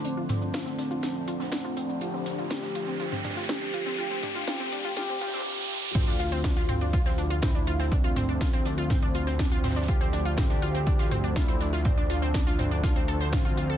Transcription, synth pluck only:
X:1
M:4/4
L:1/16
Q:1/4=122
K:Dm
V:1 name="Synth pluck"
D F C D F C D F C D F C D F C D | F C D F C D F C F C D F C D F C | F C D F F C D F F C F C z4 | [Cc] [Dd] [Ff] [Cc] [Dd] [Ff] [Cc] [Dd] [Ff] [Cc] [Dd] [Ff] [Cc] [Dd] [Ff] [Cc] |
[Dd] [Ff] [Cc] [Dd] [Ff] [Cc] [Dd] [Ff] [Cc] [Dd] [Ff] [Cc] [Dd] [Ff] [Cc] [Dd] | [Ff] [Cc] [Dd] [Ff] [Cc] [Dd] [Ff] [Cc] [Dd] [Ff] [Cc] [Dd] [Ff] [Cc] [Dd] [Ff] | [Cc] [Dd] [Ff] [Cc] [Dd] [Ff] [Cc] [Dd] [Ff] [Cc] [Aa] [cc'] [Ff] [Ff] [Ff] [Aa] |]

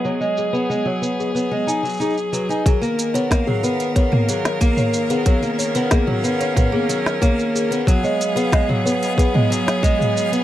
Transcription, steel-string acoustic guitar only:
X:1
M:4/4
L:1/16
Q:1/4=92
K:Blyd
V:1 name="Steel-string acoustic guitar"
F, G,2 B, G, F, B,2 B, G, D F, D z F, D | F, A,2 B, A, F, B,2 B, A, F,2 A,3 B, | F, A,2 B, A, F, B,2 B, A, F,2 A,3 B, | F, G,2 B, G, F, B,2 B, G, F,2 G,3 B, |]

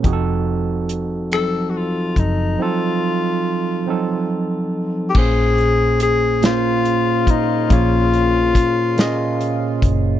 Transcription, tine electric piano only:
X:1
M:6/8
L:1/8
Q:3/8=47
K:Bbm
V:1 name="Tine electric piano"
[F,CEGA=A]3 [F,G,CEA]3 | [F,G,CE=A]3 [F,G,CEA]3 | [B,,B,DAc]3 [B,,B,DAc]3 | [B,,B,DAd]3 [B,,B,DAe]3 |]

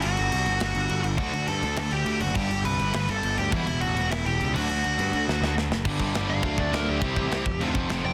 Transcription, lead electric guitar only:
X:1
M:4/4
L:1/8
Q:1/4=206
K:G
V:1 name="Lead electric guitar"
[Ff]6- [Ff] z | [Ff]2 [Aa]2 [Aa] [Gg]2 [Ff] | [Gg]2 [Bb]2 [Bb] [Aa]2 [Gg] | [Ee]2 [Ff]2 [Ee] [Gg]2 [Ff]- |
[Ff]6 z2 | z3 =f2 d _B G- | G4- G z2 g |]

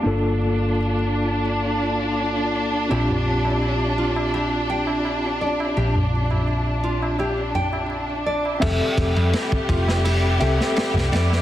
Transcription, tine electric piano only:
X:1
M:4/4
L:1/8
Q:1/4=84
K:Bblyd
V:1 name="Tine electric piano"
[B,DFA]8 | [CDFG]8- | [CDFG]8 | [CGAe]4- [CGAe] [CGAe]3 |]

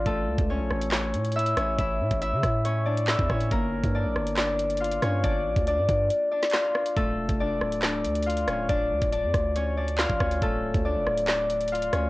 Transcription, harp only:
X:1
M:4/4
L:1/8
Q:1/4=139
K:Dm
V:1 name="Harp"
[A,A]2 [^C^c]2 [Cc]2 [Ee] [Cc] | [Ee]2 [Ee]2 [^C^c] [Dd] [Ee] [Cc] | [B,B]2 [Dd]2 [Dd]2 [Ff] [^C^c] | [Dd]2 [Dd]2 z [Dd] [Ff]2 |
[A,A]2 [Dd]2 [Dd]2 [Ff] [^C^c] | [Dd]2 [Dd]2 [^C^c] [Dd] [Ff] [Cc] | [A,A]2 [Dd]2 [Dd]2 [Ff] [^C^c] |]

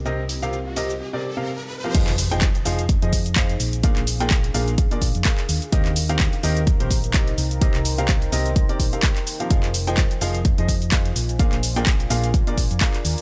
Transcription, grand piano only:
X:1
M:4/4
L:1/16
Q:"Swing 16ths" 1/4=127
K:Fdor
V:1 name="Grand piano"
[C,CGBe] z2 [C,CGBf] z2 [C,CGBe] z2 [C,CGBd] z [C,CGBf] z3 [F,CGBf] | [F,EAcf] z2 [F,EAcg] z2 [F,EAcf] z2 [F,EAce] z2 [EAcf] z3 | [B,,DABf] z2 [B,,DABg] z2 [B,,DABf] z2 [B,,DABd] z2 [DABf] z3 | [E,CGBe] z2 [E,CGBf] z2 [E,CGBe] z2 [E,CGBc] z2 [C,CGBe] z3 |
[C,CGBe] z2 [C,CGBf] z2 [C,CGBe] z2 [C,CGBd] z [C,CGBf] z3 [F,CGBf] | [F,EAcf] z2 [F,EAcg] z2 [F,EAcf] z2 [F,EAce] z2 [EAcf] z3 | [B,,DABf] z2 [B,,DABg] z2 [B,,DABf] z2 [B,,DABd] z2 [DABf] z3 |]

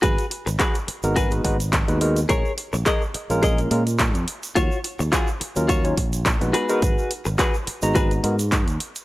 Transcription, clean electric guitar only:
X:1
M:4/4
L:1/16
Q:"Swing 16ths" 1/4=106
K:G#dor
V:1 name="Clean electric guitar"
[FGB]2 z2 [FGB] z3 [FGB] z6 z | [GAc]2 z2 [GAd] z3 [GAd] z6 z | [EFc]2 z2 [EFG] z3 [EFc] z4 z [FGB]2- | [FGB]2 z2 [FGB] z3 [FGB] z6 z |]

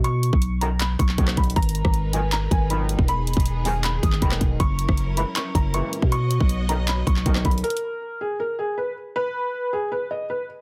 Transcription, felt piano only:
X:1
M:4/4
L:1/8
Q:1/4=158
K:B
V:1 name="Felt piano"
c'3 a b c'2 b | a3 g a g b z | b3 g b d' b z | c'3 b c' a c' z |
c'3 a b c'2 b | A3 G A G B z | B3 G B d B z |]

